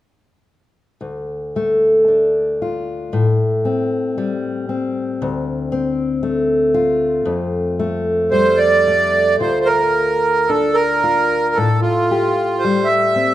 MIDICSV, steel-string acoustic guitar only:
0, 0, Header, 1, 2, 480
1, 0, Start_track
1, 0, Key_signature, -1, "minor"
1, 0, Tempo, 1071429
1, 454, Time_signature, 4, 2, 24, 8
1, 1409, Tempo, 1023891
1, 3329, Tempo, 1083032
1, 4769, Tempo, 1061947
1, 6059, End_track
2, 0, Start_track
2, 0, Title_t, "Steel-string acoustic guitar"
2, 0, Program_c, 0, 25
2, 451, Note_on_c, 0, 38, 43
2, 699, Note_on_c, 0, 57, 35
2, 932, Note_on_c, 0, 62, 35
2, 1173, Note_on_c, 0, 65, 39
2, 1401, Note_on_c, 0, 45, 48
2, 1456, Note_off_c, 0, 62, 0
2, 1457, Note_off_c, 0, 38, 0
2, 1457, Note_off_c, 0, 65, 0
2, 1646, Note_on_c, 0, 60, 39
2, 1891, Note_off_c, 0, 57, 0
2, 1892, Note_on_c, 0, 55, 40
2, 2131, Note_off_c, 0, 60, 0
2, 2133, Note_on_c, 0, 60, 39
2, 2381, Note_on_c, 0, 38, 56
2, 2419, Note_off_c, 0, 45, 0
2, 2422, Note_off_c, 0, 55, 0
2, 2616, Note_off_c, 0, 60, 0
2, 2616, Note_on_c, 0, 60, 47
2, 2854, Note_on_c, 0, 57, 44
2, 3096, Note_on_c, 0, 65, 50
2, 3332, Note_off_c, 0, 38, 0
2, 3335, Note_on_c, 0, 41, 57
2, 3573, Note_off_c, 0, 57, 0
2, 3574, Note_on_c, 0, 57, 50
2, 3804, Note_off_c, 0, 60, 0
2, 3806, Note_on_c, 0, 55, 49
2, 3819, Note_off_c, 0, 65, 0
2, 4052, Note_off_c, 0, 57, 0
2, 4054, Note_on_c, 0, 57, 43
2, 4285, Note_off_c, 0, 41, 0
2, 4287, Note_on_c, 0, 38, 48
2, 4290, Note_on_c, 0, 65, 41
2, 4339, Note_off_c, 0, 55, 0
2, 4769, Note_off_c, 0, 57, 0
2, 4771, Note_on_c, 0, 62, 39
2, 5011, Note_off_c, 0, 65, 0
2, 5016, Note_on_c, 0, 65, 39
2, 5260, Note_on_c, 0, 45, 52
2, 5303, Note_off_c, 0, 38, 0
2, 5304, Note_off_c, 0, 62, 0
2, 5306, Note_off_c, 0, 65, 0
2, 5502, Note_on_c, 0, 67, 45
2, 5743, Note_on_c, 0, 55, 38
2, 5975, Note_on_c, 0, 60, 41
2, 6059, Note_off_c, 0, 45, 0
2, 6059, Note_off_c, 0, 55, 0
2, 6059, Note_off_c, 0, 60, 0
2, 6059, Note_off_c, 0, 67, 0
2, 6059, End_track
0, 0, End_of_file